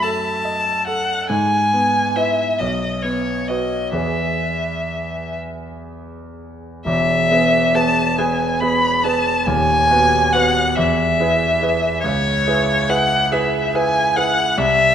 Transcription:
Already playing: F#2 F#3 A3
0.03 A4 A5
0.45 D#5
0.87 A4 F#5
1.30 G#2 G#5
1.74 B3
2.16 E4 B4 E5
2.59 B1 D#5
3.02 B3 C#5
3.48 F#4 B4 D#5
3.92 E2 B3 G#4 B4 E5
6.85 E1 E2 E5
7.31 B3 G#4 B4
7.75 B3 G#4 B4 A5
8.18 B3 G#4 B4 G#5
8.61 B3 G#4 B4 B5
9.04 B3 G#4 B4 A5
9.46 D#1 D#2 G#5
9.90 B3 F#4 B4
10.33 B3 F#4 B4 F#5
10.76 E2 E5
11.20 E4 G#4 B4
11.62 E4 G#4 B4
12.03 C#2 C#5
12.47 E4 G#4 B4
12.89 E4 G#4 B4 F#5
13.32 E4 G#4 B4 E5
13.74 E4 G#4 B4 G#5
14.16 E4 G#4 B4 F#5
14.57 C2 E5

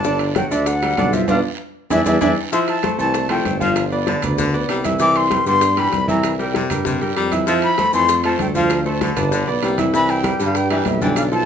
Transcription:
Already playing: G1 A5
0.04 D3 D4 D5, high bongo, long guiro, maracas
0.19 high bongo, high conga, high timbale, maracas
0.35 F#3 F#4 F#5 G5, high bongo, high conga, high timbale, short guiro, maracas
0.51 D2 D3 D4 D5 E5, high conga, short guiro, maracas
0.66 F#5, high bongo, high conga, high timbale, long guiro, maracas
0.82 G3 G4 G5, high bongo, high conga, high timbale, maracas
0.97 B1 D3 D4 D5, high bongo, low bongo, high conga, high timbale, low timbale, short guiro, maracas
1.13 F3 F4 E5 F5, high bongo, high conga, short guiro, maracas
1.28 B1 B3 D4 F4 F5, low bongo, high conga, high timbale, long guiro, maracas
1.90 E2 D4 E4 G#4 E5, low bongo, high conga, high timbale, long guiro, maracas
2.06 E2 D4 E4 G#4 E5, low bongo, high conga, high timbale, long guiro, maracas
2.21 E2 D4 E4 G#4 E5, low bongo, high conga, high timbale, long guiro, maracas
2.52 F3 E4 E5 C6, high bongo, high conga, maracas
2.68 A5, high bongo, high conga, high timbale, maracas
2.83 A3 A4 C5, high bongo, high conga, high timbale, short guiro, maracas
2.98 C2 E3 A3 A4 C5 A5, short guiro, maracas
3.14 high bongo, high conga, high timbale, long guiro, maracas
3.29 F3 A3 A4 C5 G5, high bongo, high conga, high timbale, maracas
3.45 G1, high bongo, low bongo, high conga, high timbale, short guiro, maracas
3.60 F3 F4 F5, high bongo, high conga, short guiro, maracas
3.76 high bongo, high timbale, long guiro, maracas
3.92 B3 B4 D5, high bongo, high conga, maracas
4.07 D3, high bongo, high conga, high timbale, short guiro, maracas
4.22 D2 B3 B4 D5, low conga, high timbale, short guiro, maracas
4.38 D3, high bongo, high conga, low conga, long guiro, maracas
4.54 B3 B4 D5, high bongo, high conga, maracas
4.68 C2 G3, high bongo, low bongo, high conga, high timbale, short guiro, maracas
4.84 E3 E4 E5, high bongo, high conga, high timbale, short guiro, maracas
4.99 E3 E4 E5 D6, high bongo, high conga, long guiro, maracas
5.15 C6, high bongo, high conga, high timbale, maracas
5.30 G3 G4 B4, high bongo, high conga, high timbale, short guiro, maracas
5.46 G2 D3 G3 B3 G4 C6, high conga, short guiro, maracas
5.61 high bongo, high conga, high timbale, long guiro, maracas
5.77 E3 G3 G4 B4 B5, high bongo, high conga, high timbale, maracas
5.92 C2, high bongo, low bongo, high conga, high timbale, short guiro, maracas
6.08 E3 E4 E5 A#5, high bongo, high conga, short guiro, maracas
6.23 high bongo, high conga, high timbale, long guiro, maracas
6.39 G3 G4 A#4 G5, high bongo, high conga, maracas
6.54 C3, high bongo, high conga, high timbale, short guiro, maracas
6.70 G2 G3 G4 A#4, low conga, high timbale, short guiro, maracas
6.85 C3, high bongo, high conga, low conga, long guiro, maracas
7.01 G2 G3 G4 A#4, high bongo, high conga, maracas
7.16 F2 G3, high bongo, low bongo, high conga, high timbale, short guiro, maracas
7.32 E3 E4 E5, high bongo, high conga, high timbale, short guiro, maracas
7.47 F3 E4 E5 A5, high bongo, high conga, long guiro, maracas
7.62 B5, high bongo, high conga, high timbale, maracas
7.78 A3 A4 C5, high bongo, high conga, high timbale, short guiro, maracas
7.93 F2 E3 A3 A4 C5 C6, high conga, short guiro, maracas
8.09 high bongo, high conga, high timbale, long guiro, maracas
8.24 F3 A3 A4 C5 A5, high bongo, high conga, high timbale, maracas
8.39 D2 G5, high bongo, low bongo, high conga, high timbale, short guiro, maracas
8.55 F3 F4 F5, high bongo, high conga, short guiro, maracas
8.70 high bongo, high conga, high timbale, long guiro, maracas
8.86 A3 A4 C5 A5, high bongo, high conga, maracas
9.01 D3, high bongo, high conga, high timbale, short guiro, maracas
9.16 G1 B3 B4 D5, low conga, high timbale, short guiro, maracas
9.32 D3, high bongo, high conga, long guiro, maracas
9.47 B1 B3 B4 D5, high bongo, high conga, maracas
9.63 C2 G3, high bongo, low bongo, high conga, high timbale, low timbale, short guiro, maracas
9.78 E3 E4 E5, high bongo, high conga, high timbale, short guiro, maracas
9.93 E3 E4 E5 B5, high bongo, high conga, long guiro, maracas
10.09 G5, high bongo, high conga, high timbale, maracas
10.24 G3 G4 B4, high bongo, high conga, high timbale, short guiro, maracas
10.39 G2 D3 G3 G4 B4, high conga, short guiro, maracas
10.46 F5
10.55 G5, high bongo, high conga, high timbale, long guiro, maracas
10.70 E3 G3 G4 B4 E5, high bongo, high conga, high timbale, maracas
10.85 B1 E5, high bongo, low bongo, high conga, high timbale, low timbale, short guiro, maracas
11.01 D3 E3 D4 D5 G5, high bongo, high conga, short guiro, maracas
11.16 F5, high bongo, high conga, high timbale, long guiro, maracas
11.32 F3 F4 A4 A5, high bongo, high conga, maracas

